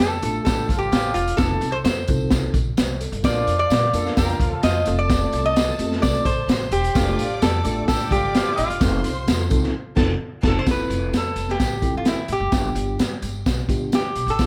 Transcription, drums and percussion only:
0.00 snare loud
0.00 tambourine medium
0.22 closed hi-hat medium
0.22 tambourine medium
0.46 kick medium
0.46 snare loud
0.46 closed hi-hat medium
0.46 tambourine loud
0.69 kick medium
0.69 closed hi-hat medium
0.69 tambourine soft
0.92 snare loud
0.92 closed hi-hat medium
0.92 tambourine medium
1.15 closed hi-hat medium
1.15 tambourine soft
1.28 closed hi-hat medium
1.38 kick loud
1.38 snare loud
1.38 closed hi-hat medium
1.38 tambourine medium
1.61 closed hi-hat medium
1.61 tambourine soft
1.85 snare loud
1.85 closed hi-hat medium
1.85 tambourine loud
2.08 kick medium
2.08 closed hi-hat medium
2.08 tambourine medium
2.31 kick medium
2.31 snare loud
2.31 closed hi-hat medium
2.31 tambourine loud
2.54 kick medium
2.54 closed hi-hat medium
2.54 tambourine soft
2.77 snare loud
2.77 closed hi-hat medium
2.77 tambourine medium
3.01 closed hi-hat medium
3.01 tambourine soft
3.13 closed hi-hat medium
3.24 kick loud
3.24 snare loud
3.24 closed hi-hat medium
3.24 tambourine medium
3.47 closed hi-hat medium
3.47 tambourine soft
3.70 snare loud
3.70 closed hi-hat medium
3.70 tambourine loud
3.93 closed hi-hat medium
3.93 tambourine medium
4.06 snare soft
4.17 kick medium
4.17 snare loud
4.17 closed hi-hat medium
4.17 tambourine loud
4.29 closed hi-hat soft
4.40 kick medium
4.40 closed hi-hat medium
4.40 tambourine medium
4.63 snare loud
4.63 closed hi-hat medium
4.63 tambourine medium
4.86 closed hi-hat medium
4.86 tambourine soft
5.10 kick loud
5.10 snare loud
5.10 closed hi-hat medium
5.10 tambourine medium
5.33 closed hi-hat medium
5.33 tambourine soft
5.56 snare loud
5.56 closed hi-hat medium
5.56 tambourine medium
5.79 closed hi-hat medium
5.79 tambourine medium
5.92 snare soft
6.03 kick loud
6.03 snare loud
6.03 closed hi-hat medium
6.03 tambourine loud
6.15 closed hi-hat soft
6.25 kick medium
6.25 closed hi-hat medium
6.25 tambourine medium
6.49 snare loud
6.49 closed hi-hat medium
6.49 tambourine medium
6.72 closed hi-hat medium
6.72 tambourine soft
6.84 closed hi-hat medium
6.95 kick loud
6.95 snare loud
6.95 closed hi-hat loud
6.95 tambourine loud
7.19 closed hi-hat medium
7.19 tambourine medium
7.42 snare loud
7.42 closed hi-hat medium
7.42 tambourine medium
7.65 closed hi-hat medium
7.65 tambourine medium
7.88 kick medium
7.88 snare loud
7.88 closed hi-hat medium
7.88 tambourine loud
8.00 closed hi-hat soft
8.11 kick medium
8.11 closed hi-hat medium
8.11 tambourine medium
8.35 snare loud
8.35 closed hi-hat medium
8.35 tambourine medium
8.58 closed hi-hat medium
8.58 tambourine soft
8.70 closed hi-hat medium
8.81 kick loud
8.81 snare loud
8.81 closed hi-hat medium
8.81 tambourine loud
9.04 closed hi-hat medium
9.04 tambourine soft
9.28 snare loud
9.28 closed hi-hat medium
9.28 tambourine loud
9.50 kick medium
9.50 closed hi-hat medium
9.50 tambourine medium
9.63 snare soft
9.97 kick loud
9.97 snare loud
9.97 crash medium
10.43 kick loud
10.43 snare loud
10.43 crash medium
10.66 kick loud
10.66 snare loud
10.66 closed hi-hat medium
10.66 tambourine medium
10.90 closed hi-hat medium
10.90 tambourine soft
11.13 snare loud
11.13 closed hi-hat medium
11.13 tambourine medium
11.36 closed hi-hat medium
11.36 tambourine medium
11.49 snare soft
11.60 kick medium
11.60 snare loud
11.60 closed hi-hat medium
11.60 tambourine loud
11.82 kick medium
11.82 closed hi-hat medium
11.82 tambourine soft
12.05 snare loud
12.05 closed hi-hat medium
12.05 tambourine medium
12.28 closed hi-hat medium
12.28 tambourine soft
12.52 kick loud
12.52 snare loud
12.52 closed hi-hat medium
12.52 tambourine medium
12.75 closed hi-hat medium
12.75 tambourine soft
12.99 snare loud
12.99 closed hi-hat medium
12.99 tambourine medium
13.22 closed hi-hat medium
13.22 tambourine medium
13.46 kick medium
13.46 snare loud
13.46 closed hi-hat medium
13.46 tambourine loud
13.69 kick medium
13.69 closed hi-hat medium
13.69 tambourine soft
13.92 snare loud
13.92 closed hi-hat medium
13.92 tambourine medium
14.15 closed hi-hat medium
14.15 tambourine soft
14.28 closed hi-hat medium
14.39 kick loud
14.39 snare loud
14.39 closed hi-hat medium
14.39 tambourine loud

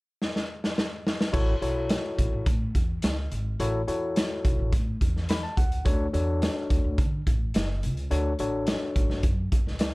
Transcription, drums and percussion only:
0.22 snare medium
0.36 snare soft
0.64 snare medium
0.78 snare medium
1.07 snare medium
1.21 snare medium
1.34 kick medium
1.34 crash medium
1.62 closed hi-hat medium
1.89 snare loud
1.89 closed hi-hat medium
2.19 kick medium
2.19 closed hi-hat medium
2.46 kick medium
2.46 closed hi-hat medium
2.75 kick medium
2.75 closed hi-hat medium
3.02 snare loud
3.02 closed hi-hat medium
3.31 closed hi-hat medium
3.60 closed hi-hat medium
3.88 closed hi-hat medium
4.16 snare loud
4.16 closed hi-hat medium
4.45 kick medium
4.45 closed hi-hat medium
4.72 kick medium
4.72 closed hi-hat medium
5.01 kick medium
5.01 closed hi-hat medium
5.16 snare soft
5.29 snare loud
5.29 closed hi-hat medium
5.57 kick medium
5.57 closed hi-hat medium
5.72 closed hi-hat soft
5.85 kick loud
5.85 closed hi-hat medium
6.14 closed hi-hat medium
6.42 snare loud
6.42 closed hi-hat medium
6.70 kick medium
6.70 closed hi-hat medium
6.98 kick medium
6.98 closed hi-hat medium
7.27 kick medium
7.27 closed hi-hat medium
7.54 snare loud
7.54 closed hi-hat medium
7.83 closed hi-hat medium
7.97 closed hi-hat soft
8.11 closed hi-hat medium
8.39 closed hi-hat medium
8.67 snare loud
8.67 closed hi-hat medium
8.96 kick medium
8.96 closed hi-hat medium
9.10 snare soft
9.23 kick medium
9.23 closed hi-hat medium
9.52 kick medium
9.52 closed hi-hat medium
9.67 snare soft
9.79 snare loud
9.79 closed hi-hat medium

